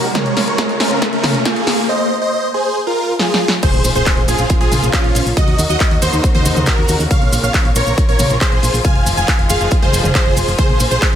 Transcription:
Already playing: C#3 F#3 A#3 D#4 F#4, riser
0.04 D#2
0.15 C#3 F3 A#3 C4 F4 A#4 C#5, kick, snare, closed hi-hat, mid tom
0.26 A#1, closed hi-hat
0.37 A#1, snare, open hi-hat
0.48 A#1 A#4 C#5, closed hi-hat
0.58 kick, snare, closed hi-hat
0.69 A#1, closed hi-hat
0.80 A#1 C#4 A#4, snare, open hi-hat
0.91 A#1, closed hi-hat
1.02 kick, snare, closed hi-hat
1.13 A#1 C#4 A#4, closed hi-hat
1.24 snare, open hi-hat, mid tom
1.35 A#1, closed hi-hat
1.45 F4 G#4, kick, snare, closed hi-hat
1.56 A#1, closed hi-hat
1.67 A#1, snare, open hi-hat
1.78 A#1
1.89 C5 D#5
2.22 C5 D#5
2.54 G#4 C5
2.87 F4 A#4
3.19 F4 G#4, snare
3.34 snare
3.48 snare
3.63 C#3 F3 A#3 F4 G#4 C5, kick, closed hi-hat, mid tom, crash, impact, maracas
3.74 A#1, closed hi-hat
3.84 A#1, open hi-hat, maracas
3.95 A#1 G#4 C5, closed hi-hat, maracas
4.06 kick, clap, closed hi-hat, maracas
4.17 A#1, closed hi-hat
4.28 A#1 F4 G#4, open hi-hat, maracas
4.38 A#1, closed hi-hat, maracas
4.50 kick, closed hi-hat, maracas
4.61 A#1 F4 G#4, closed hi-hat
4.72 A#1, open hi-hat, mid tom, maracas
4.83 A#1, closed hi-hat, maracas
4.93 C#4 F4, kick, clap, closed hi-hat, maracas
5.04 A#1, closed hi-hat
5.15 A#1, open hi-hat, maracas
5.26 A#1, maracas
5.37 C#3 F#3 D#4 F#4 D#5, kick, closed hi-hat, mid tom, maracas
5.48 D#2, closed hi-hat
5.58 D#2, open hi-hat, maracas
5.69 D#2 F#4 D#5, closed hi-hat, maracas
5.80 kick, clap, closed hi-hat, maracas
5.91 D#2, closed hi-hat
6.02 D#2 D#4 C5, open hi-hat, maracas
6.13 D#2, closed hi-hat, maracas
6.24 kick, closed hi-hat, maracas
6.35 D#2 D#4 C5, closed hi-hat, mid tom
6.45 D#2, open hi-hat, maracas
6.56 D#2, closed hi-hat, mid tom, maracas
6.66 F#4 A#4, kick, clap, closed hi-hat, maracas
6.78 D#2, closed hi-hat
6.88 D#2, open hi-hat, maracas
7.00 D#2, maracas
7.11 F3 C4 F4 C#5 F5, kick, closed hi-hat, mid tom, maracas
7.22 A#1, closed hi-hat
7.32 A#1, open hi-hat, maracas
7.43 A#1 C#5 F5, closed hi-hat, maracas
7.54 kick, clap, closed hi-hat, maracas
7.65 A#1, closed hi-hat
7.75 A#1 A#4 C#5, open hi-hat, maracas
7.87 A#1, closed hi-hat, maracas
7.98 kick, closed hi-hat, maracas
8.09 A#1 A#4 C#5, closed hi-hat
8.19 A#1, open hi-hat, mid tom, maracas
8.30 A#1, closed hi-hat, maracas
8.41 G#4 C5, kick, clap, closed hi-hat, maracas
8.52 A#1, closed hi-hat
8.63 A#1, open hi-hat, maracas
8.74 A#1, maracas
8.84 D#3 G#3 C5 F5 G#5, kick, closed hi-hat, mid tom, maracas
8.96 F1, closed hi-hat
9.06 F1, open hi-hat, maracas
9.17 F1 F5 G#5, closed hi-hat, maracas
9.28 kick, clap, closed hi-hat, maracas
9.39 F1, closed hi-hat
9.50 F1 G#4 F5, open hi-hat, maracas
9.61 F1, closed hi-hat, maracas
9.71 kick, closed hi-hat, maracas
9.82 F1 G#4 C5, closed hi-hat, mid tom
9.93 F1, open hi-hat, maracas
10.04 F1, closed hi-hat, mid tom, maracas
10.15 G#4 C5, kick, clap, closed hi-hat, maracas
10.26 F1, closed hi-hat, mid tom
10.37 F1, open hi-hat, maracas
10.48 F1, maracas
10.58 C#3 A#3 G#4 C5, kick, closed hi-hat, mid tom, maracas
10.69 A#1, closed hi-hat
10.80 A#1, open hi-hat, ride, maracas
10.91 A#1 G#4 C5, closed hi-hat, maracas
11.02 kick, clap, closed hi-hat, maracas

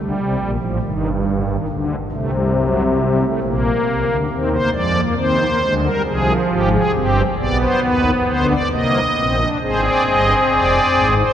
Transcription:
Already playing: D2 D3 G3
0.17 C2 C3
0.37 A#1 A#2
0.59 A1 A2 F3
0.81 G1 G2 D#3
1.25 D3
1.47 D#3
1.68 D2 D3
2.11 C2 C3 A3
2.33 G3
2.55 F#3
2.99 G3
3.20 A3
3.42 A#1 A#2 A#3
3.86 C2 C3
4.08 D2 D3
4.30 D#2 D#3 C4
4.51 A#3 C5
4.73 F2 F3 G#3 D5
4.95 A#3
5.17 D#2 D#3 C4 C5
5.39 A#3
5.61 D2 D3 G#3
5.82 G3 A#4
6.05 C2 C3 F3 G#4
6.50 G#1 G#2 G4
6.72 G#4
6.94 G1 G2 C4 G4
7.38 B1 B2 B3 D5
7.61 C5
7.83 D#2 D#3 B4
8.26 D2 D3 C5
8.49 D5
8.71 C2 C3 A#3 D#5
9.16 A#1 A#2 C4
9.39 D4
9.61 G#1 G#2 C4 G#4 C5
9.84 D5
10.07 G1 G2 D#5
10.51 F1 F2 D5
10.95 G#1 G#2
11.17 C5

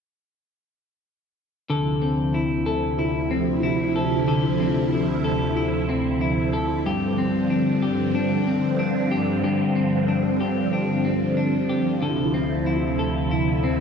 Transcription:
1.69 D2 C3 D3 F3 E4 A4
2.02 C4
2.34 E4
2.66 A4
2.99 E4
3.31 C4
3.63 E4
3.96 A4
4.28 D3 A4
4.60 C4
4.93 E4
5.24 A4
5.57 E4
5.89 C4
6.21 E4
6.53 A4
6.84 G2 D3 F3 C4 G4
7.18 C4
7.50 D4
7.82 G4
8.15 D4
8.47 C4
8.79 D4
9.11 G4
9.44 G2 G4
9.76 C4
10.08 D4
10.40 G4
10.73 D4
11.05 C4
11.37 D4
11.69 G4
12.02 D2 C3 D3 E4 A4
12.34 C4
12.66 E4
12.99 A4
13.31 E4
13.64 C4

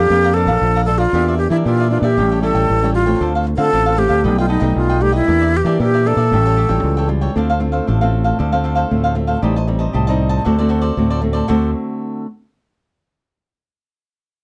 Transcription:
Already playing: D4 G4 A4 C5
0.10 F2 A#3 A4 D5 F5 A#5
0.24 D5 F5 A#5
0.34 D4 A4 C5 D5 F5 A#5
0.46 A#1 D5 F5 A#5
0.61 A#1 F3
0.75 D5 F5 A#5
0.85 D4 A4 C5, muted cavaquinho stroke
0.98 F4 D5 F5 A#5
1.13 E2 E3 A#3 D4 G4 A#4 D5 E5
1.28 A#4 D5 E5
1.38 G4, muted cavaquinho stroke
1.50 E3 A#3 D4 E4 G4 A#4 D5 E5
1.65 A#2 E3 F4 G4 A#4 D5 E5
1.80 A#4 D5 E5
1.90 A#3 D4 F4 G4
2.02 A#2 G4 A#4 D5 E5
2.17 A1 A2 G3 C#4 E4 G4 A4 C#5 G5
2.32 A4 C#5 G5
2.42 G3 C#4 E4 G4 A4 C#5 G5
2.55 A1 A4 C#5 G5
2.69 A1 E3
2.82 G3 C#4 E4 A4 C#5 G5
2.94 F4, muted cavaquinho stroke
3.06 A3 C4 F4 A4 C#5 G5
3.21 D2 D3 D4 A4 C5 F5
3.35 A4 C5 F5
3.46 muted cavaquinho stroke
3.57 D3 A3 C4 F4 A4 C5 F5
3.72 A1 A2 D4 A4 C5 F5
3.86 A4 C5 F5
3.97 A3 C4 F4 G4
4.09 D2 A4 C5 F5
4.24 B1 B2 G3 A3 D#4 A4 B4 D#5 G5
4.38 F4 B4 D#5 G5
4.49 D#4 A4 B4 D#5 G5
4.60 B1 G3 A3 D#4 B4 D#5 G5
4.76 B1 B2 F4
4.89 B4 D#5 G5
5.00 G3 A3 D#4 G4, muted cavaquinho stroke
5.12 E4 B4 D#5 G5
5.27 E2 E3 A#3 D4 G4 A#4 D5 E5
5.41 A#4 D5 E5
5.53 G4, muted cavaquinho stroke
5.64 E3 A#3 D4 G4 A#4 D5 E5
5.79 A#2 E3 G4 A#4 D5 E5
5.94 A#4 D5 E5
6.05 A#3 D4 G4 A4
6.17 A#2 A#4 D5 E5
6.31 A1 A2 G3 C#4 F4 G4 A4 C#5 G5
6.46 A4 C#5 G5
6.57 G4 A4 C#5 G5
6.68 A1 G3 C#4 F4 A4 C#5 G5
6.83 C#2 E3
6.97 A4 C#5 G5
7.08 G3 C#4 F4, muted cavaquinho stroke
7.21 A4 C#5 G5
7.35 D2 D3 A3 C4 D4 F4 A4 C5 F5
7.50 A4 C5 F5
7.60 A3 C4 F4, muted cavaquinho stroke
7.72 A4 C5 F5
7.87 A1 A2 D4 A4 C5 F5
8.01 A3 C4 F4 A4 C5 F5
8.24 A4 C5 F5
8.39 D2 D3 D4 A4 C5 F5
8.52 A3 C4 F4 A4 C5 F5
8.64 D4 A4 C5 F5
8.75 A4 C5 F5
8.90 D2 A2 A3 C4 F4
9.04 A4 C5 F5
9.15 A3 C4 F4, muted cavaquinho stroke
9.27 A4 C5 F5
9.42 A1 A2 G3 C4 D#4 G4 C5 D#5 A5
9.56 C5 D#5 A5
9.68 G3 C4 D#4, muted cavaquinho stroke
9.79 C5 D#5 A5
9.93 C2 A2 G4 C5 D#5 A5
10.07 G3 C4 D#4 C5 D#5 A5
10.29 C5 D#5 A5
10.45 D2 D3 A3 C4 F#4 A4 C5 D5
10.59 A3 C4 F#4 A4 C5 D5
10.69 F#4 A4 C5 D5
10.81 A4 C5 D5
10.97 D2 A2 A3 C4 F#4
11.10 A4 C5 D5
11.21 A3 C4 F#4, muted cavaquinho stroke
11.33 A4 C5 D5
11.48 D2 D3 A3 C4 F#4 A4 C5 D5

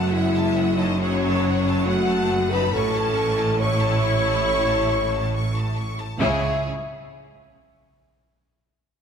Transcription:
Already playing: F#1 F#2 A3 F#5 A5
0.11 G#3 E4 E5 F#5
0.35 A5
0.58 F#5
0.77 F#3 D#4 D#5 A5
0.98 F#3 C#4 C#5 F#5
1.25 A5
1.46 F#5
1.68 A5
1.86 A3 F#4 F#5
2.10 A5
2.32 F#5
2.50 D#4 B4 A5 B5
2.72 A1 A2 C#4 A4 A5 C#6
2.96 A5
3.16 C#6
3.39 A5
3.59 E4 C#5 C#6
3.81 A5
4.03 C#6
4.24 A5
4.45 C#6
4.68 A5
4.90 C#6
5.12 A5
5.35 C#6
5.56 A5
5.78 C#6
5.99 A5
6.20 C#2 C#3 E4 G#4 C#5 E5

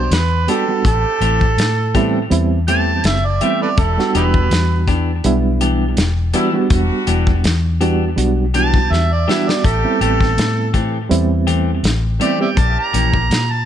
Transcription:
Already playing: G3 B3 D4 F#4 C5
0.11 E2 B4, snare, closed hi-hat
0.48 G3 B3 D4 F#4 G4 A4, closed hi-hat
0.69 G3 B3 D4 F#4
0.84 A1 A3 C4 G4 A4, kick, closed hi-hat
1.21 A1 E3 A3 C4 G4, closed hi-hat
1.41 kick
1.58 A2, snare, closed hi-hat
1.95 E3 G3 A3 B3 C4 E4 G4, kick, closed hi-hat
2.30 E2 G3 B3 C4 E4, closed hi-hat
2.68 E3 G3 A3 B3 C4 E4 G4 A5, closed hi-hat
3.04 F#1 E5, snare, closed hi-hat
3.25 D5
3.40 E3 G3 A3 B3 C4 E4 G4 E5, closed hi-hat
3.62 A4 B4 D5
3.78 E1 G3 D4 E4 A4, kick, closed hi-hat
3.98 G3 B3 D4 F#4, snare
4.15 E1 E3 B3 D4 D#4 G4 B4, closed hi-hat
4.34 kick
4.51 E2, snare, closed hi-hat
4.88 E3 B3 D4 G4, kick, closed hi-hat
5.24 B1 G3 B3 D4 E4, closed hi-hat
5.61 E3 B3 D4 G4, closed hi-hat
5.97 E1, snare, closed hi-hat
6.34 E3 G3 B3 D4 E4 F#4 G4, closed hi-hat
6.53 G3 B3 D4 F#4
6.70 E1 G3 D4 F#4, kick, closed hi-hat
7.07 E1 E3 B3 D4 G4, closed hi-hat
7.27 kick
7.44 E2, snare, closed hi-hat
7.81 E3 G3 B3 D4 F#4 G4, closed hi-hat
8.16 B1 G3 B3 D4 F#4, closed hi-hat
8.54 E3 G3 B3 D4 F#4 G4 A5, closed hi-hat
8.74 kick
8.91 E2 E5, snare
9.12 D5
9.28 E3 G3 B3 D4 E4 F#4 G4 E5, snare
9.49 D5, snare
9.64 A1 A3 G4 A4, kick, closed hi-hat
9.84 G3 B3 C4 E4
10.01 A1 E3 A3 C4 G4 A4, closed hi-hat
10.21 kick, snare
10.38 A2, snare, closed hi-hat
10.74 E3 A3 C4 G4, kick, closed hi-hat
11.09 E2 G3 B3 C4 E4, closed hi-hat
11.47 E3 A3 C4 G4, closed hi-hat
11.83 A1, snare, closed hi-hat
12.19 E3 G3 A3 B3 C4 E4 G4 D5, closed hi-hat
12.39 G3 B3 C4 G4 D5 E5 G5
12.57 A#1 A#3 C#4 G4 A5, kick, closed hi-hat
12.79 A#5
12.93 A#1 E3 A#3 C#4 G4, closed hi-hat
13.14 kick
13.30 A#2, snare, closed hi-hat
13.52 A5

